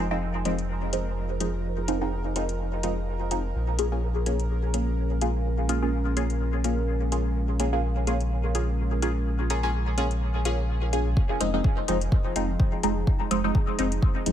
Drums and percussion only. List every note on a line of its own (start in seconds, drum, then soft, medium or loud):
0.45 closed hi-hat medium
0.59 closed hi-hat soft
0.93 closed hi-hat medium
1.40 closed hi-hat medium
1.88 closed hi-hat medium
2.36 closed hi-hat medium
2.49 closed hi-hat soft
2.83 closed hi-hat medium
3.31 closed hi-hat medium
3.79 closed hi-hat medium
4.26 closed hi-hat medium
4.40 closed hi-hat soft
4.74 closed hi-hat medium
5.21 closed hi-hat medium
5.69 closed hi-hat medium
6.17 closed hi-hat medium
6.30 closed hi-hat soft
6.64 closed hi-hat medium
7.12 closed hi-hat medium
7.60 closed hi-hat medium
8.07 closed hi-hat medium
8.21 closed hi-hat soft
8.55 closed hi-hat medium
9.02 closed hi-hat medium
9.50 closed hi-hat medium
9.98 closed hi-hat medium
10.11 closed hi-hat soft
10.45 closed hi-hat medium
10.93 closed hi-hat medium
11.17 kick loud
11.41 closed hi-hat medium
11.64 kick loud
11.88 closed hi-hat medium
12.01 closed hi-hat soft
12.12 kick loud
12.36 closed hi-hat medium
12.60 kick loud
12.83 closed hi-hat medium
13.07 kick loud
13.31 closed hi-hat medium
13.55 kick loud
13.79 closed hi-hat medium
13.92 closed hi-hat soft
14.02 kick loud
14.26 closed hi-hat medium